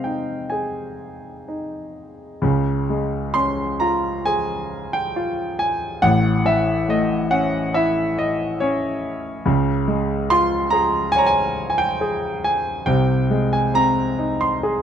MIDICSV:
0, 0, Header, 1, 2, 480
1, 0, Start_track
1, 0, Tempo, 949367
1, 1233, Time_signature, 4, 2, 24, 8
1, 1234, Tempo, 906344
1, 2674, Tempo, 864553
1, 4594, Tempo, 847458
1, 6514, Tempo, 882353
1, 8044, End_track
2, 0, Start_track
2, 0, Title_t, "Grand piano"
2, 0, Program_c, 0, 0
2, 0, Control_c, 0, 64, 127
2, 0, Note_on_c, 0, 48, 46
2, 0, Note_on_c, 0, 56, 40
2, 0, Note_on_c, 0, 60, 38
2, 0, Note_on_c, 0, 75, 66
2, 0, Note_on_c, 0, 77, 80
2, 0, Note_on_c, 0, 79, 47
2, 20, Note_off_c, 0, 79, 0
2, 20, Note_on_c, 0, 79, 53
2, 27, Note_on_c, 0, 63, 36
2, 251, Note_on_c, 0, 80, 55
2, 262, Note_on_c, 0, 68, 34
2, 265, Note_off_c, 0, 79, 0
2, 482, Note_off_c, 0, 56, 0
2, 724, Note_off_c, 0, 80, 0
2, 728, Note_off_c, 0, 60, 0
2, 742, Note_off_c, 0, 63, 0
2, 750, Note_on_c, 0, 63, 36
2, 1212, Note_off_c, 0, 68, 0
2, 1215, Note_off_c, 0, 48, 0
2, 1218, Note_off_c, 0, 63, 0
2, 1223, Note_on_c, 0, 49, 64
2, 1227, Note_on_c, 0, 37, 61
2, 1240, Control_c, 0, 64, 0
2, 1243, Note_off_c, 0, 75, 0
2, 1243, Note_off_c, 0, 77, 0
2, 1319, Control_c, 0, 64, 127
2, 1476, Note_on_c, 0, 56, 50
2, 1709, Note_on_c, 0, 84, 92
2, 1715, Note_on_c, 0, 61, 51
2, 1953, Note_on_c, 0, 82, 81
2, 1959, Note_on_c, 0, 65, 50
2, 1961, Note_off_c, 0, 84, 0
2, 2179, Note_off_c, 0, 82, 0
2, 2195, Note_on_c, 0, 80, 93
2, 2201, Note_on_c, 0, 68, 49
2, 2416, Note_off_c, 0, 56, 0
2, 2533, Note_off_c, 0, 80, 0
2, 2554, Note_on_c, 0, 79, 87
2, 2652, Note_off_c, 0, 61, 0
2, 2667, Note_off_c, 0, 65, 0
2, 2675, Note_on_c, 0, 65, 52
2, 2896, Note_off_c, 0, 79, 0
2, 2914, Note_on_c, 0, 80, 84
2, 3132, Note_off_c, 0, 49, 0
2, 3134, Note_off_c, 0, 37, 0
2, 3139, Note_off_c, 0, 68, 0
2, 3140, Note_off_c, 0, 80, 0
2, 3146, Note_off_c, 0, 65, 0
2, 3152, Note_on_c, 0, 78, 98
2, 3154, Note_on_c, 0, 45, 65
2, 3157, Note_on_c, 0, 33, 62
2, 3168, Control_c, 0, 64, 0
2, 3252, Control_c, 0, 64, 127
2, 3392, Note_on_c, 0, 52, 49
2, 3395, Note_on_c, 0, 76, 80
2, 3403, Note_off_c, 0, 78, 0
2, 3630, Note_on_c, 0, 57, 55
2, 3639, Note_on_c, 0, 75, 78
2, 3643, Note_off_c, 0, 76, 0
2, 3867, Note_on_c, 0, 78, 88
2, 3868, Note_on_c, 0, 61, 59
2, 3885, Note_off_c, 0, 75, 0
2, 4096, Note_off_c, 0, 78, 0
2, 4109, Note_on_c, 0, 76, 84
2, 4118, Note_on_c, 0, 64, 57
2, 4332, Note_off_c, 0, 52, 0
2, 4354, Note_on_c, 0, 75, 78
2, 4360, Note_off_c, 0, 76, 0
2, 4567, Note_off_c, 0, 57, 0
2, 4575, Note_off_c, 0, 75, 0
2, 4584, Note_off_c, 0, 61, 0
2, 4586, Note_on_c, 0, 73, 75
2, 4593, Note_on_c, 0, 61, 57
2, 4926, Note_off_c, 0, 73, 0
2, 5047, Note_off_c, 0, 45, 0
2, 5048, Note_off_c, 0, 33, 0
2, 5050, Note_off_c, 0, 64, 0
2, 5058, Note_off_c, 0, 61, 0
2, 5069, Note_on_c, 0, 37, 73
2, 5069, Note_on_c, 0, 49, 72
2, 5081, Control_c, 0, 64, 0
2, 5191, Control_c, 0, 64, 127
2, 5308, Note_on_c, 0, 56, 58
2, 5548, Note_on_c, 0, 84, 115
2, 5554, Note_on_c, 0, 65, 60
2, 5769, Note_off_c, 0, 84, 0
2, 5776, Note_on_c, 0, 82, 97
2, 5788, Note_on_c, 0, 68, 59
2, 6011, Note_on_c, 0, 80, 109
2, 6029, Note_off_c, 0, 82, 0
2, 6034, Note_on_c, 0, 73, 65
2, 6047, Note_on_c, 0, 82, 87
2, 6053, Note_off_c, 0, 80, 0
2, 6093, Note_on_c, 0, 80, 102
2, 6094, Note_off_c, 0, 82, 0
2, 6245, Note_off_c, 0, 56, 0
2, 6330, Note_off_c, 0, 80, 0
2, 6338, Note_on_c, 0, 80, 80
2, 6384, Note_off_c, 0, 80, 0
2, 6385, Note_on_c, 0, 79, 91
2, 6494, Note_off_c, 0, 65, 0
2, 6507, Note_off_c, 0, 68, 0
2, 6516, Note_on_c, 0, 68, 61
2, 6724, Note_off_c, 0, 79, 0
2, 6752, Note_on_c, 0, 80, 92
2, 6961, Note_off_c, 0, 37, 0
2, 6961, Note_off_c, 0, 49, 0
2, 6967, Note_off_c, 0, 73, 0
2, 6972, Note_off_c, 0, 68, 0
2, 6978, Note_on_c, 0, 79, 87
2, 6980, Note_on_c, 0, 36, 62
2, 6983, Note_on_c, 0, 48, 71
2, 6993, Note_off_c, 0, 80, 0
2, 6993, Control_c, 0, 64, 0
2, 7087, Control_c, 0, 64, 127
2, 7220, Note_on_c, 0, 56, 56
2, 7319, Note_off_c, 0, 79, 0
2, 7341, Note_on_c, 0, 80, 76
2, 7454, Note_on_c, 0, 60, 55
2, 7456, Note_off_c, 0, 80, 0
2, 7462, Note_on_c, 0, 82, 95
2, 7700, Note_on_c, 0, 63, 55
2, 7819, Note_on_c, 0, 84, 82
2, 7841, Note_off_c, 0, 82, 0
2, 7942, Note_on_c, 0, 68, 56
2, 8044, Note_off_c, 0, 36, 0
2, 8044, Note_off_c, 0, 48, 0
2, 8044, Note_off_c, 0, 56, 0
2, 8044, Note_off_c, 0, 60, 0
2, 8044, Note_off_c, 0, 63, 0
2, 8044, Note_off_c, 0, 68, 0
2, 8044, Note_off_c, 0, 84, 0
2, 8044, End_track
0, 0, End_of_file